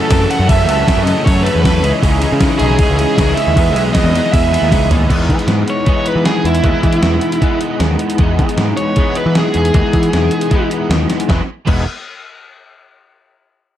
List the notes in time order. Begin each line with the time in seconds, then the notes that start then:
Already playing: E3 A3 C#4 A4 F#5 E6
0.08 F#2 C#3 E3 F#3 A3 C#4 A4, kick, snare, ride
0.28 F#2 C#3 E3 F#3 A3 C#4 A4 F#5, ride
0.39 F#2
0.47 F#2 C#3 E3 F#3 A3 C#4 A4 E5, kick, ride
0.66 C#2 F#2 C#3 E3 F#3 A3 C#4 A4 E5, ride
0.86 F#2 C#3 E3 F#3 A3 C#4 A4, kick, snare, ride
0.97 F#2
1.03 F#2 C#3 E3 F#3 A3 C#4 A4 D#5, ride
1.18 snare
1.24 F#2 C#3 E3 F#3 A3 C#4 A4 C#5, kick, ride
1.43 F#2 C#3 E3 F#3 A3 C#4 A4 B4, ride
1.55 E2
1.62 F#2 C#3 E3 F#3 A3 C#4 A4 B4, kick, snare, ride
1.82 C#2 C#3 E3 G#3 C#4 D#4 E4 G#4 C#5 D#6, ride
2.02 C#2 C#3 E3 G#3 C#4 D#4 E4 G#4, kick, ride
2.20 C#3 E3 G#3 C#4 D#4 E4 G#4, ride
2.32 C#3
2.39 C#3 E3 G#3 C#4 E4 G#4, kick, snare, ride
2.43 D#4
2.59 B1 C#3 E3 G#3 C#4 E4 G#4, ride
2.63 D#4
2.70 snare
2.79 C#3 E3 G#3 C#4 D#4 E4 G#4, kick, ride
2.89 C#2
2.96 C#3 E3 G#3 C#4 E4 G#4, ride
3.01 D#4
3.16 C#2 C#3 E3 G#3 C#4 E4 G#4, kick, snare, ride
3.21 D#4
3.34 C#3 G#3 C#4 E4 G#4 E5, ride
3.39 E3 D#4
3.47 D#2
3.55 E2 E3 G#3 B3 D#4 E4 G#4, kick, ride
3.73 B1 E3 G#3 B3 E4 G#4 E5, ride
3.78 B3 D#4
3.93 E3 G#3 B3 E4 G#4 D#5, kick, snare, ride
3.97 D#4
4.04 E2
4.12 E3 G#3 B3 D#4 E4 G#4, ride
4.26 snare
4.32 E2 E3 G#3 B3 D#4 E4 G#4 E5, kick, ride
4.51 E3 G#3 B3 D#4 E4 G#4, ride
4.62 D#2
4.70 C#2 E3 G#3 B3 D#4 E4 G#4, kick, snare, ride
4.90 D#2 E3 G#3 B3 D#4 E4 G#4, floor tom, ride
5.08 E2 E3 G#3 B3, kick, closed hi-hat, crash
5.13 D#4
5.29 E3, kick, closed hi-hat
5.39 closed hi-hat
5.47 G#2, snare, closed hi-hat
5.68 C#5, closed hi-hat
5.85 E3 G#3 B3, kick, closed hi-hat
5.89 D#4
6.06 B4, closed hi-hat
6.16 E3
6.25 G#4, snare, closed hi-hat
6.44 E2 E4, closed hi-hat
6.55 closed hi-hat
6.62 D#2 E3 G#3 B3, kick, closed hi-hat
6.67 D#4
6.83 E3, kick, snare, closed hi-hat
6.93 closed hi-hat
7.02 E2, snare, closed hi-hat
7.21 closed hi-hat
7.32 closed hi-hat
7.40 E3 G#3 B3, kick, closed hi-hat
7.45 D#4
7.61 closed hi-hat
7.80 D#2, snare, closed hi-hat
7.99 closed hi-hat
8.10 closed hi-hat
8.18 E2 E3 G#3 B3, kick, closed hi-hat
8.23 D#4
8.39 E3, kick, snare, closed hi-hat
8.49 closed hi-hat
8.57 G#2, snare, closed hi-hat
8.77 C#5, closed hi-hat
8.96 E3 G#3 B3 D#4, kick, closed hi-hat
9.15 B4, closed hi-hat
9.26 E3
9.35 G#4, snare, closed hi-hat
9.54 E2 G#4, closed hi-hat
9.65 closed hi-hat
9.72 D#2 E3 G#3 B3, kick, closed hi-hat
9.77 D#4
9.93 E3, kick, closed hi-hat
10.03 closed hi-hat
10.13 E2, snare, closed hi-hat
10.31 closed hi-hat
10.41 closed hi-hat
10.50 E3 G#3 B3, kick, closed hi-hat
10.55 D#4
10.71 closed hi-hat
10.90 D#2, snare, closed hi-hat
11.10 snare, closed hi-hat
11.20 closed hi-hat
11.28 E1 E3 G#3 B3 D#4 E4, kick, snare
11.65 E1 E3 G#3 B3 D#4 E4, kick, crash